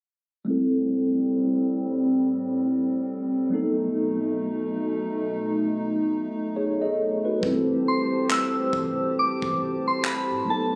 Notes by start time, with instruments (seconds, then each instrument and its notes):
0.45 analog synth pad A2 G3 C4, tine electric piano G3 A3 C4
0.49 tine electric piano E4 A4
3.49 analog synth pad B2 A3 D#4, tine electric piano F#3 A3 B3 D#4
3.55 tine electric piano A4
6.56 tine electric piano G#4 C#5
6.82 tine electric piano A4 D#5
7.25 tine electric piano F#4 B4
7.41 808-style bass A1, tine electric piano G3 A3 C4, analog synth pad G4 C5 A5, kick
7.45 tine electric piano E4 A4
7.88 synth bell C6
8.31 synth bell E6, clap
8.73 808-style bass A1, kick
9.19 synth bell D6
9.42 808-style bass A1, kick
9.88 synth bell C6
10.04 synth bell B5, clap
10.30 808-style bass A2
10.45 tine electric piano F#3 A3 B3, analog synth pad D#4 B4
10.49 tine electric piano D#4 A4, synth bell A5